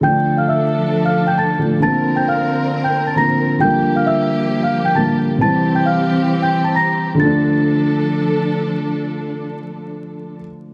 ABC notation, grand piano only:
X:1
M:4/4
L:1/8
Q:1/4=134
K:Dm
V:1 name="Grand piano" clef=bass
[D,F,A,D]6- [D,F,A,D] [D,F,A,D] | [D,F,B,C]6 [D,F,B,C]2 | [D,F,G,B,]6 [D,F,G,B,]2 | [C,E,G,C]8 |
[D,F,A,D]8- | [D,F,A,D]8 |]